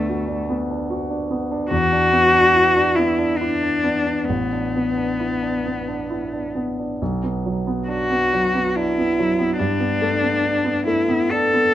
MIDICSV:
0, 0, Header, 1, 3, 480
1, 0, Start_track
1, 0, Key_signature, 2, "major"
1, 0, Tempo, 831025
1, 989, Time_signature, 3, 2, 24, 8
1, 1957, Tempo, 900901
1, 4357, Tempo, 872093
1, 4837, Tempo, 831025
1, 5797, Tempo, 881057
1, 6512, End_track
2, 0, Start_track
2, 0, Title_t, "Cello"
2, 0, Program_c, 0, 42
2, 0, Note_on_c, 0, 57, 55
2, 278, Note_off_c, 0, 57, 0
2, 985, Note_on_c, 0, 66, 82
2, 1705, Note_on_c, 0, 64, 59
2, 1714, Note_off_c, 0, 66, 0
2, 1949, Note_on_c, 0, 62, 62
2, 1958, Note_off_c, 0, 64, 0
2, 2417, Note_on_c, 0, 59, 50
2, 2425, Note_off_c, 0, 62, 0
2, 3639, Note_off_c, 0, 59, 0
2, 4352, Note_on_c, 0, 66, 53
2, 4831, Note_on_c, 0, 64, 59
2, 4840, Note_off_c, 0, 66, 0
2, 5308, Note_off_c, 0, 64, 0
2, 5312, Note_on_c, 0, 62, 66
2, 6025, Note_off_c, 0, 62, 0
2, 6037, Note_on_c, 0, 64, 56
2, 6279, Note_on_c, 0, 69, 71
2, 6287, Note_off_c, 0, 64, 0
2, 6512, Note_off_c, 0, 69, 0
2, 6512, End_track
3, 0, Start_track
3, 0, Title_t, "Grand piano"
3, 0, Program_c, 1, 0
3, 0, Control_c, 1, 64, 127
3, 0, Note_on_c, 1, 38, 44
3, 0, Note_on_c, 1, 59, 32
3, 0, Note_on_c, 1, 62, 34
3, 52, Note_on_c, 1, 66, 33
3, 112, Note_off_c, 1, 62, 0
3, 159, Note_on_c, 1, 62, 33
3, 235, Note_off_c, 1, 66, 0
3, 284, Note_off_c, 1, 59, 0
3, 284, Note_on_c, 1, 59, 34
3, 348, Note_off_c, 1, 62, 0
3, 408, Note_on_c, 1, 62, 36
3, 470, Note_off_c, 1, 59, 0
3, 521, Note_on_c, 1, 66, 41
3, 592, Note_off_c, 1, 62, 0
3, 636, Note_on_c, 1, 62, 33
3, 708, Note_off_c, 1, 66, 0
3, 755, Note_on_c, 1, 59, 37
3, 825, Note_off_c, 1, 62, 0
3, 874, Note_on_c, 1, 62, 38
3, 944, Note_off_c, 1, 59, 0
3, 971, Note_off_c, 1, 38, 0
3, 986, Note_on_c, 1, 40, 47
3, 991, Note_off_c, 1, 62, 0
3, 999, Control_c, 1, 64, 0
3, 1099, Control_c, 1, 64, 127
3, 1110, Note_on_c, 1, 62, 36
3, 1225, Note_on_c, 1, 59, 39
3, 1299, Note_off_c, 1, 62, 0
3, 1349, Note_on_c, 1, 62, 38
3, 1417, Note_off_c, 1, 59, 0
3, 1468, Note_on_c, 1, 64, 34
3, 1540, Note_off_c, 1, 62, 0
3, 1595, Note_on_c, 1, 62, 38
3, 1661, Note_off_c, 1, 64, 0
3, 1716, Note_on_c, 1, 59, 37
3, 1787, Note_off_c, 1, 62, 0
3, 1839, Note_on_c, 1, 62, 41
3, 1911, Note_off_c, 1, 59, 0
3, 1969, Note_on_c, 1, 64, 37
3, 2030, Note_off_c, 1, 62, 0
3, 2086, Note_on_c, 1, 62, 31
3, 2150, Note_off_c, 1, 64, 0
3, 2195, Note_on_c, 1, 59, 35
3, 2267, Note_off_c, 1, 62, 0
3, 2318, Note_on_c, 1, 62, 31
3, 2383, Note_off_c, 1, 59, 0
3, 2406, Note_off_c, 1, 40, 0
3, 2433, Note_off_c, 1, 62, 0
3, 2438, Control_c, 1, 64, 0
3, 2438, Note_on_c, 1, 33, 39
3, 2535, Control_c, 1, 64, 127
3, 2562, Note_on_c, 1, 62, 30
3, 2684, Note_on_c, 1, 59, 28
3, 2753, Note_off_c, 1, 62, 0
3, 2800, Note_on_c, 1, 62, 28
3, 2876, Note_off_c, 1, 59, 0
3, 2922, Note_on_c, 1, 64, 30
3, 2996, Note_off_c, 1, 62, 0
3, 3041, Note_on_c, 1, 62, 30
3, 3117, Note_off_c, 1, 64, 0
3, 3165, Note_on_c, 1, 59, 27
3, 3236, Note_off_c, 1, 62, 0
3, 3285, Note_on_c, 1, 62, 32
3, 3357, Note_off_c, 1, 59, 0
3, 3403, Note_on_c, 1, 64, 29
3, 3476, Note_off_c, 1, 62, 0
3, 3524, Note_on_c, 1, 62, 28
3, 3596, Note_off_c, 1, 64, 0
3, 3642, Note_on_c, 1, 59, 28
3, 3718, Note_off_c, 1, 62, 0
3, 3770, Note_on_c, 1, 62, 26
3, 3836, Note_off_c, 1, 59, 0
3, 3868, Note_off_c, 1, 33, 0
3, 3887, Note_off_c, 1, 62, 0
3, 3890, Note_on_c, 1, 35, 42
3, 3892, Control_c, 1, 64, 0
3, 3989, Control_c, 1, 64, 127
3, 4005, Note_on_c, 1, 59, 30
3, 4127, Note_on_c, 1, 54, 31
3, 4193, Note_off_c, 1, 59, 0
3, 4239, Note_on_c, 1, 59, 32
3, 4312, Note_off_c, 1, 54, 0
3, 4350, Note_on_c, 1, 62, 33
3, 4429, Note_off_c, 1, 59, 0
3, 4475, Note_on_c, 1, 59, 32
3, 4546, Note_off_c, 1, 62, 0
3, 4600, Note_on_c, 1, 54, 31
3, 4668, Note_off_c, 1, 59, 0
3, 4718, Note_on_c, 1, 59, 35
3, 4789, Note_off_c, 1, 54, 0
3, 4838, Note_on_c, 1, 62, 36
3, 4910, Note_off_c, 1, 59, 0
3, 4962, Note_on_c, 1, 59, 31
3, 5031, Note_off_c, 1, 62, 0
3, 5084, Note_on_c, 1, 54, 37
3, 5151, Note_off_c, 1, 59, 0
3, 5197, Note_on_c, 1, 59, 36
3, 5270, Note_off_c, 1, 54, 0
3, 5294, Note_off_c, 1, 35, 0
3, 5314, Note_off_c, 1, 59, 0
3, 5315, Note_on_c, 1, 43, 46
3, 5322, Control_c, 1, 64, 0
3, 5401, Control_c, 1, 64, 127
3, 5431, Note_on_c, 1, 59, 33
3, 5560, Note_on_c, 1, 57, 37
3, 5623, Note_off_c, 1, 59, 0
3, 5681, Note_on_c, 1, 59, 37
3, 5751, Note_off_c, 1, 57, 0
3, 5799, Note_on_c, 1, 62, 36
3, 5872, Note_off_c, 1, 59, 0
3, 5917, Note_on_c, 1, 59, 38
3, 5991, Note_off_c, 1, 62, 0
3, 6037, Note_on_c, 1, 57, 38
3, 6115, Note_off_c, 1, 59, 0
3, 6155, Note_on_c, 1, 59, 39
3, 6235, Note_off_c, 1, 57, 0
3, 6283, Note_on_c, 1, 62, 40
3, 6351, Note_off_c, 1, 59, 0
3, 6401, Note_on_c, 1, 59, 39
3, 6470, Note_off_c, 1, 62, 0
3, 6512, Note_off_c, 1, 43, 0
3, 6512, Note_off_c, 1, 59, 0
3, 6512, End_track
0, 0, End_of_file